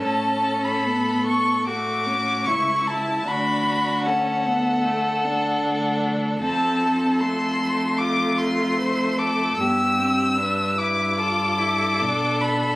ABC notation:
X:1
M:4/4
L:1/16
Q:1/4=75
K:D
V:1 name="Violin"
a3 b3 c'2 d'4 c'2 a2 | b4 f8- f2 z2 | [K:Flyd] a4 c'4 d'2 c'4 d'2 | e'6 d'8 b2 |]
V:2 name="Violin"
A8 F4 E4 | F4 A12 | [K:Flyd] A8 F4 c2 A2 | G4 B4 A8 |]
V:3 name="Viola"
C4 B,4 A,2 C2 E4 | D4 C2 B,2 A,2 D6 | [K:Flyd] C4 A,2 A,8- A,2 | B,2 C2 D2 E2 F2 E2 D4 |]
V:4 name="Cello" clef=bass
A,,12 C,,4 | D,,12 D,,4 | [K:Flyd] F,,16 | G,,12 B,,4 |]